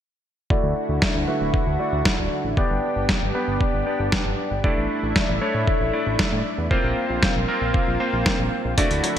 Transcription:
0.50 analog synth pad D3 D4 E4 F#4, electric grand piano A3 E4 F#4 D5, kick
0.63 analog synth bass D2
0.89 analog synth bass D2
1.02 kick, snare
1.15 analog synth bass D2
1.28 electric grand piano A3 E4 F#4 B4
1.41 analog synth bass D1
1.54 kick
1.67 analog synth bass D2
1.79 electric grand piano A3 E4 F#4 D5
1.93 analog synth bass D2
2.05 kick, snare
2.19 analog synth bass D1
2.44 analog synth bass A1
2.57 electric grand piano B3 D4 G4 D5, analog synth pad B3 G4, kick
2.70 analog synth bass G1
2.96 analog synth bass G1
3.09 kick, snare
3.22 analog synth bass G1
3.35 electric grand piano B3 D4 G4 B4
3.48 analog synth bass G1
3.61 kick
3.74 analog synth bass G1
3.86 electric grand piano B3 D4 G4 D5
3.99 analog synth bass G1
4.12 kick, snare
4.25 analog synth bass G1
4.51 analog synth bass G1
4.64 electric grand piano A3 D4 E4 D5, analog synth pad A3 E4, kick
4.77 analog synth bass A1
5.03 analog synth bass A1
5.16 kick, snare
5.29 analog synth bass A1
5.41 electric grand piano A3 D4 E4 C#5
5.55 analog synth bass A2
5.67 kick
5.81 analog synth bass A1
5.93 electric grand piano A3 D4 E4 D5
6.06 analog synth bass A1
6.19 kick, snare
6.32 analog synth bass A2
6.58 analog synth bass E2
6.71 electric grand piano A#3 C4 F4 C5, analog synth pad A#3 C4 F4, kick
6.84 analog synth bass A#1
7.10 analog synth bass A#1
7.23 kick, snare
7.36 analog synth bass A#1
7.48 electric grand piano A#3 C4 F4 A#4
7.62 analog synth bass A#1
7.74 kick
7.87 analog synth bass A#1
8.00 electric grand piano A#3 C4 F4 C5
8.13 analog synth bass A#1
8.26 kick, snare
8.39 analog synth bass A#1
8.65 analog synth bass A#1
8.78 synth arpeggio sound D3, analog synth pad D3 A3 E4 F#4, electric grand piano A3 E4 F#4 D5, kick, closed hi-hat
8.91 analog synth bass D2, closed hi-hat
9.04 synth arpeggio sound F#3, closed hi-hat

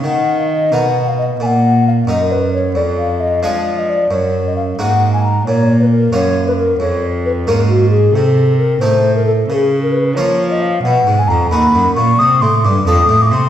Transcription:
0.03 cello D#3, harpsichord D#3, flute F#5
0.39 flute F5
0.51 flute D#5
0.72 harpsichord B2 D#4 A#4, cello B2, flute F#5
1.08 flute F5
1.19 flute D#5
1.40 cello A#2, harpsichord A#2, flute G#5
1.46 flute F#5
1.88 flute F5
2.07 harpsichord F#2 D#4 A#4, cello F#2, flute D#5
2.32 flute B4
2.53 flute C#5
2.75 cello F2, harpsichord F2, flute D5
2.98 flute F5
3.20 flute D#5
3.43 cello F3, harpsichord F3 G#3 D4 G#4, flute F5
3.79 flute D#5
3.89 flute D5
4.11 harpsichord F#2, cello F#2, flute C#5
4.47 flute D#5
4.56 flute F5
4.79 cello G#2, harpsichord G#2 A#3 D#4 F#4, flute F#5
5.13 flute G#5
5.23 flute A#5
5.46 cello A#2, harpsichord A#2, flute C#5
5.81 flute B4
5.90 flute A#4
6.12 harpsichord F#2 A#3 C#4 F4, cello F#2, flute C#5
6.48 flute B4
6.57 flute A#4
6.80 cello F2, harpsichord F2, flute C#5
7.26 flute B4
7.47 cello G#2, harpsichord G#2 A#3 C#4 F4, flute A#4
7.69 flute F#4
7.90 flute G#4
8.14 cello C3, harpsichord C3, flute A4
8.58 flute A#4
8.81 cello A2, harpsichord A2 A3 D#4, flute C5
9.16 flute A#4
9.26 flute A4
9.49 cello C#3, harpsichord C#3, flute A#4
9.54 flute G#4
9.83 flute A#4
9.92 flute B4
10.15 cello F3, harpsichord F3 A#3 C#4 F4, flute C#5
10.51 flute D#5
10.61 flute F5
10.83 cello B2, harpsichord B2, flute F#5
11.06 cello G#2, harpsichord G#2
11.19 flute G#5
11.28 cello F2, harpsichord F2, flute A#5
11.50 harpsichord D#2 D#4 F#4, cello D#2, flute B5
11.74 cello F#2, harpsichord F#2
11.95 cello A#2, harpsichord A#2, flute C#6
12.18 cello C3, harpsichord C3, flute D#6
12.41 cello A2, harpsichord A2, flute C6
12.63 cello G2, harpsichord G2, flute D6
12.86 cello F2, harpsichord F2 F4 A4, flute D#6
13.09 cello A2, harpsichord A2
13.22 flute D6
13.32 cello C3, harpsichord C3, flute C6

